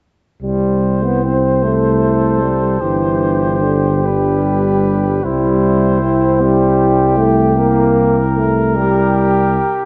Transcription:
0.42 C2 G3 E4 C5
1.04 B3
1.23 C4
1.62 A3 A4
2.42 G3
2.81 G1 E3 D4 G4
3.64 D3
4.04 G3 B4
5.23 C2 G3 E4 C5
6.02 C4
6.41 G3 G4
7.17 A3
7.56 A#3 A#4
8.36 A3
8.76 G3 G4

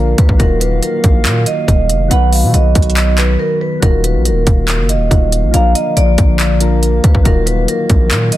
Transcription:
Already playing: A#1 D3 F3 A#3 D4 F4 A#4 F5
0.18 D2 B4, kick, closed hi-hat
0.29 A#1, kick
0.38 D#1 D#3 F#3 A#3 D#4 F4 A#4 F5, kick, closed hi-hat
0.43 F#4
0.61 B4, closed hi-hat
0.83 A#4, closed hi-hat
1.04 A#1, kick, closed hi-hat
1.25 A#2, clap, closed hi-hat
1.46 D#5, closed hi-hat
1.68 D#1, kick, closed hi-hat
1.89 F1, closed hi-hat
2.08 B1 F#3 B3 D#4 F#4 F#5, closed hi-hat
2.13 B4
2.32 F5, open hi-hat
2.43 B2
2.54 B1 D#5, closed hi-hat
2.75 B1, kick, closed hi-hat
2.82 closed hi-hat
2.90 closed hi-hat
2.97 clap, closed hi-hat
3.18 B4, clap, closed hi-hat
3.39 A#4
3.61 B4
3.80 D#1 F#3 A#3 D#4 F4 A#4 F5, kick, closed hi-hat
3.85 F#4
4.04 B4, closed hi-hat
4.15 A#1
4.25 A#4, closed hi-hat
4.31 D#1
4.47 D#1, kick, closed hi-hat
4.68 clap, closed hi-hat
4.79 F#1
4.89 D#5, closed hi-hat
4.95 D#1
5.10 D#1 F#3 A#3 D#4 F4 F#4, kick, closed hi-hat
5.32 closed hi-hat
5.43 A#1
5.51 A#1 D3 F3 A#3 D4 F4 F5, closed hi-hat
5.56 A#4
5.75 D#5, closed hi-hat
5.97 A#1 D5, closed hi-hat
6.18 A#1, kick, closed hi-hat
6.39 clap, closed hi-hat
6.60 F3 A#3 D4 F4 A#4, closed hi-hat
6.83 closed hi-hat
7.04 D2 B4, kick, closed hi-hat
7.15 A#1, kick
7.23 D#1 D#3 F#3 A#3 D#4 F4 A#4, kick, closed hi-hat
7.28 F#4
7.46 B4, closed hi-hat
7.68 A#4, closed hi-hat
7.90 A#1, kick, closed hi-hat
8.11 A#2, clap, closed hi-hat
8.32 D#5, closed hi-hat

